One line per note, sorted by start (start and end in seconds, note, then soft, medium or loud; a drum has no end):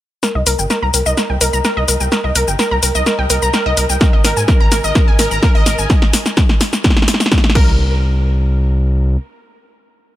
0.23 0.33 A#4 medium
0.23 snare soft
0.23 shaker soft
0.35 0.43 C2 medium
0.35 0.46 D#5 medium
0.47 0.55 C2 loud
0.47 0.58 A#4 loud
0.47 open hi-hat loud
0.47 shaker medium
0.59 0.66 G1 medium
0.59 0.70 G5 medium
0.59 shaker soft
0.70 0.76 A#4 loud
0.70 snare medium
0.70 shaker soft
0.82 0.90 C2 medium
0.82 0.91 A#5 loud
0.94 1.02 C2 loud
0.94 1.03 A#4 medium
0.94 open hi-hat loud
0.94 shaker medium
1.06 1.13 C2 medium
1.06 1.15 D#5 loud
1.06 shaker soft
1.17 1.27 A#4 medium
1.17 snare medium
1.17 shaker soft
1.30 1.37 C2 medium
1.30 1.41 G5 medium
1.41 1.49 C2 medium
1.41 1.53 A#4 loud
1.41 open hi-hat loud
1.41 shaker medium
1.53 1.61 C2 medium
1.53 1.64 A#5 loud
1.53 shaker soft
1.65 1.70 A#4 loud
1.65 snare medium
1.65 shaker soft
1.77 1.84 C2 medium
1.77 1.86 D#5 loud
1.88 1.96 C2 medium
1.88 1.98 A#4 medium
1.88 open hi-hat loud
1.88 shaker medium
2.00 2.08 C2 medium
2.00 2.06 G5 medium
2.00 shaker soft
2.12 2.22 A#4 medium
2.12 snare medium
2.12 shaker soft
2.24 2.32 C2 medium
2.24 2.35 D#5 medium
2.35 2.44 C2 loud
2.35 2.47 A#4 loud
2.35 open hi-hat loud
2.35 shaker medium
2.48 2.55 G1 medium
2.48 2.59 G5 medium
2.48 shaker soft
2.59 2.65 A#4 loud
2.59 snare medium
2.59 shaker soft
2.71 2.79 C2 medium
2.71 2.80 A#5 medium
2.83 2.91 C2 medium
2.83 2.92 A#4 medium
2.83 open hi-hat loud
2.83 shaker medium
2.95 3.02 C2 loud
2.95 3.04 D#5 loud
2.95 shaker soft
3.06 3.16 A#4 medium
3.06 snare medium
3.06 shaker soft
3.19 3.26 C2 medium
3.19 3.29 G5 medium
3.30 3.38 C2 medium
3.30 3.42 A#4 loud
3.30 open hi-hat loud
3.30 shaker medium
3.42 3.50 C2 medium
3.42 3.53 A#5 loud
3.42 shaker soft
3.54 3.59 A#4 loud
3.54 snare medium
3.54 shaker soft
3.66 3.73 C2 medium
3.66 3.75 D#5 loud
3.77 3.85 C2 loud
3.77 3.87 A#4 medium
3.77 open hi-hat loud
3.77 shaker medium
3.90 3.97 C2 medium
3.90 3.95 G5 medium
3.90 shaker soft
4.01 4.11 A#4 medium
4.01 kick loud
4.01 snare medium
4.01 shaker soft
4.13 4.21 G#1 medium
4.13 4.24 D#5 medium
4.25 4.33 G#1 loud
4.25 4.36 A#4 loud
4.25 snare medium
4.25 open hi-hat loud
4.25 shaker medium
4.37 4.44 G#2 loud
4.37 4.48 G#5 medium
4.37 shaker soft
4.48 4.54 A#4 loud
4.48 kick loud
4.48 snare medium
4.48 shaker soft
4.60 4.68 G#1 medium
4.60 4.69 A#5 loud
4.72 4.80 G#1 loud
4.72 4.81 A#4 medium
4.72 snare medium
4.72 open hi-hat loud
4.72 shaker medium
4.84 4.91 G#1 medium
4.84 4.93 D#5 loud
4.84 shaker soft
4.95 5.05 A#4 medium
4.95 kick loud
4.95 snare medium
4.95 shaker soft
5.08 5.15 G#1 medium
5.08 5.18 G#5 medium
5.19 5.27 G#1 loud
5.19 5.31 A#4 loud
5.19 snare medium
5.19 open hi-hat loud
5.19 shaker medium
5.31 5.39 G#1 medium
5.31 5.42 A#5 loud
5.31 shaker soft
5.43 5.48 A#4 loud
5.43 kick loud
5.43 snare medium
5.43 shaker soft
5.55 5.62 G#1 medium
5.55 5.64 D#5 loud
5.66 5.74 G#1 loud
5.66 5.76 A#4 medium
5.66 snare medium
5.66 open hi-hat loud
5.66 shaker medium
5.78 5.86 G#1 medium
5.78 5.84 G#5 medium
5.78 shaker soft
5.90 kick loud
5.90 snare loud
5.90 shaker soft
6.02 snare medium
6.13 snare loud
6.13 open hi-hat loud
6.13 shaker medium
6.26 snare medium
6.26 shaker soft
6.37 kick loud
6.37 snare loud
6.37 shaker soft
6.49 snare medium
6.61 snare loud
6.61 open hi-hat loud
6.61 shaker medium
6.73 snare medium
6.73 shaker soft
6.84 kick loud
6.84 snare loud
6.84 shaker soft
6.90 snare medium
6.97 snare medium
7.02 snare medium
7.08 snare loud
7.08 open hi-hat loud
7.08 shaker medium
7.14 snare medium
7.20 snare medium
7.20 shaker soft
7.26 snare medium
7.32 kick loud
7.32 snare loud
7.32 shaker soft
7.38 snare loud
7.44 snare medium
7.50 snare medium
7.55 9.17 C2 medium
7.55 7.99 A#4 loud
7.55 kick loud
7.55 crash medium